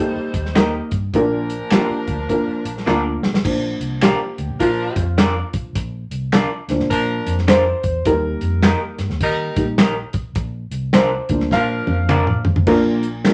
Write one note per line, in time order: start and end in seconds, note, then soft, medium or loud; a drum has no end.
0.00 0.88 G3 medium
0.00 0.34 A#3 medium
0.00 0.34 D#4 medium
0.00 0.88 D#4 medium
0.00 0.34 G4 medium
0.00 0.34 A4 medium
0.00 0.88 C5 medium
0.16 muted fingered electric bass stroke soft
0.34 0.79 D#2 medium
0.34 kick medium
0.34 closed hi-hat medium
0.46 snare soft
0.55 0.92 A#3 medium
0.55 0.70 D#4 medium
0.55 0.92 D#4 medium
0.55 0.70 G4 medium
0.55 0.92 G4 medium
0.55 0.71 A#4 medium
0.55 0.92 A#4 medium
0.55 0.71 D#5 loud
0.55 finger snap medium
0.55 snare loud
0.55 closed hi-hat medium
0.91 1.09 G2 medium
0.91 kick medium
0.91 closed hi-hat medium
1.13 1.58 A#1 loud
1.13 2.04 A#2 medium
1.13 3.19 F3 medium
1.13 1.50 A#3 medium
1.13 3.19 D4 medium
1.13 1.50 D4 medium
1.13 1.50 F4 medium
1.13 3.19 A#4 medium
1.13 1.50 A#4 loud
1.13 kick medium
1.13 closed hi-hat medium
1.50 closed hi-hat medium
1.71 2.08 A#3 medium
1.71 1.86 D4 medium
1.71 2.08 D4 medium
1.71 1.86 F4 medium
1.71 2.08 F4 medium
1.71 2.08 G4 medium
1.71 1.87 A#4 medium
1.71 1.87 D5 medium
1.71 finger snap loud
1.71 snare loud
1.71 closed hi-hat medium
1.89 muted fingered electric bass stroke soft
2.07 2.24 D2 medium
2.07 kick medium
2.07 closed hi-hat medium
2.29 2.65 A#3 medium
2.29 2.65 D4 medium
2.29 2.65 F4 medium
2.29 2.65 A#4 loud
2.29 kick medium
2.29 closed hi-hat medium
2.47 muted fingered electric bass stroke soft
2.65 2.82 A#1 medium
2.65 closed hi-hat medium
2.77 snare soft
2.86 3.15 D2 loud
2.86 3.23 A#3 medium
2.86 3.01 D4 medium
2.86 3.23 D4 medium
2.86 3.23 F4 medium
2.86 3.02 F4 medium
2.86 3.23 A#4 medium
2.86 3.02 A#4 medium
2.86 3.02 D5 medium
2.86 finger snap medium
2.86 snare soft
3.23 3.40 B1 medium
3.23 snare medium
3.34 snare medium
3.45 3.73 A#1 loud
3.45 5.72 F3 medium
3.45 5.72 A#3 soft
3.45 5.72 D4 medium
3.45 kick loud
3.45 crash loud
3.80 4.11 C2 medium
3.80 closed hi-hat medium
4.01 4.17 D4 medium
4.01 4.17 F4 medium
4.01 4.56 G4 loud
4.01 4.18 A#4 medium
4.01 4.18 D5 medium
4.01 finger snap loud
4.01 snare loud
4.01 closed hi-hat medium
4.38 4.47 D2 medium
4.38 closed hi-hat medium
4.49 4.58 A#1 medium
4.60 4.88 A#2 medium
4.60 5.04 F3 medium
4.60 5.04 D4 medium
4.60 5.50 F4 loud
4.60 5.05 A#4 medium
4.60 kick medium
4.60 closed hi-hat medium
4.96 5.41 F2 medium
4.96 kick medium
4.96 closed hi-hat medium
5.18 5.33 D4 medium
5.18 5.33 F4 medium
5.18 5.33 A#4 medium
5.18 5.33 D5 medium
5.18 finger snap medium
5.18 snare loud
5.18 closed hi-hat medium
5.53 5.71 B1 loud
5.53 kick loud
5.53 closed hi-hat medium
5.75 6.03 A#1 loud
5.75 kick loud
5.75 closed hi-hat medium
6.11 6.42 C2 medium
6.11 closed hi-hat medium
6.32 6.48 D4 medium
6.32 6.48 F4 medium
6.32 6.48 A#4 medium
6.32 6.49 D5 loud
6.32 finger snap loud
6.32 snare loud
6.32 closed hi-hat medium
6.68 6.77 D2 medium
6.68 7.45 F3 medium
6.68 7.45 A#3 medium
6.68 7.45 D4 medium
6.68 snare soft
6.68 closed hi-hat medium
6.79 6.88 A#1 medium
6.79 snare soft
6.90 7.19 A#2 loud
6.90 7.35 F3 medium
6.90 7.35 D4 medium
6.90 7.35 A#4 loud
6.90 kick medium
6.90 closed hi-hat medium
7.26 7.71 F2 loud
7.26 closed hi-hat medium
7.38 snare soft
7.48 7.63 D4 medium
7.48 7.63 F4 medium
7.48 7.63 A#4 medium
7.48 8.08 C5 loud
7.48 7.64 D5 medium
7.48 finger snap loud
7.48 snare loud
7.48 closed hi-hat loud
7.83 8.01 E2 medium
7.83 kick loud
7.83 closed hi-hat medium
8.05 8.33 D#2 loud
8.05 9.56 G3 medium
8.05 9.56 A#3 medium
8.05 9.57 D#4 medium
8.05 8.96 A#4 loud
8.05 kick loud
8.05 closed hi-hat medium
8.41 8.72 F2 loud
8.41 closed hi-hat medium
8.63 8.78 D#4 medium
8.63 8.78 G4 loud
8.63 8.79 A#4 medium
8.63 8.79 D#5 medium
8.63 finger snap loud
8.63 snare loud
8.63 closed hi-hat medium
8.98 9.07 G2 medium
8.98 snare soft
8.98 closed hi-hat medium
9.09 9.18 D#2 medium
9.09 snare soft
9.21 9.49 D#3 loud
9.21 9.66 G3 medium
9.21 9.66 D#4 medium
9.21 9.66 A#4 loud
9.21 kick medium
9.21 closed hi-hat medium
9.56 10.01 A#1 loud
9.56 9.77 G3 medium
9.56 9.77 A#3 soft
9.56 9.77 D#4 medium
9.56 kick loud
9.56 closed hi-hat medium
9.78 9.93 D#4 medium
9.78 9.94 G4 medium
9.78 9.94 A#4 loud
9.78 9.94 D#5 medium
9.78 finger snap medium
9.78 snare loud
9.78 closed hi-hat loud
10.13 10.31 B1 medium
10.13 kick loud
10.13 closed hi-hat medium
10.35 10.64 A#1 loud
10.35 kick loud
10.35 closed hi-hat medium
10.71 11.16 C2 medium
10.71 closed hi-hat medium
10.93 11.09 D4 medium
10.93 11.09 F4 medium
10.93 11.09 A#4 loud
10.93 11.54 C5 medium
10.93 11.09 D5 loud
10.93 finger snap loud
10.93 snare loud
10.93 closed hi-hat medium
11.29 11.47 D2 medium
11.29 12.63 F3 medium
11.29 12.63 A#3 medium
11.29 12.64 D4 medium
11.29 kick loud
11.29 closed hi-hat medium
11.40 snare soft
11.51 11.79 A#2 loud
11.51 11.97 F3 medium
11.51 11.97 D4 medium
11.51 11.97 A#4 loud
11.51 12.42 F5 loud
11.51 kick medium
11.51 snare medium
11.87 12.32 F2 loud
11.87 high tom medium
12.09 12.24 D4 medium
12.09 12.24 F4 loud
12.09 12.25 A#4 medium
12.09 12.25 D5 loud
12.09 finger snap loud
12.09 mid tom medium
12.27 mid tom medium
12.45 12.62 B1 loud
12.45 floor tom loud
12.56 floor tom loud
12.67 13.34 A#1 loud
12.67 13.34 A#2 medium
12.67 13.03 A#3 loud
12.67 13.03 D4 loud
12.67 13.03 F4 loud
12.67 13.03 A#4 loud
12.67 kick loud
12.67 crash medium
13.03 closed hi-hat medium
13.25 13.34 A#3 medium
13.25 13.34 D4 medium
13.25 13.34 F4 medium
13.25 13.34 A#4 loud
13.25 finger snap loud
13.25 snare medium
13.25 closed hi-hat medium